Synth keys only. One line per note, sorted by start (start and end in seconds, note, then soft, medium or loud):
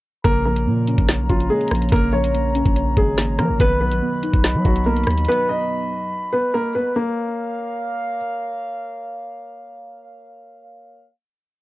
0.24 1.29 C#3 medium
0.45 1.50 F3 medium
0.67 1.49 A#3 medium
0.87 1.28 C#4 medium
1.08 2.13 C#5 medium
1.29 2.34 C#4 medium
1.50 2.33 A#3 medium
1.72 2.12 F3 medium
1.92 2.97 C#3 loud
2.13 3.18 F3 medium
2.34 3.17 A#3 medium
2.55 2.96 C#4 loud
2.76 3.60 C#5 medium
2.97 3.60 C#4 medium
3.18 3.60 A#3 medium
3.39 3.60 F3 medium
3.60 4.65 D#3 medium
3.81 4.86 F#3 medium
4.02 4.85 B3 medium
4.23 4.64 D#4 medium
4.44 5.49 D#5 medium
4.65 5.70 D#4 medium
4.86 5.91 B3 medium
5.07 6.12 F#3 medium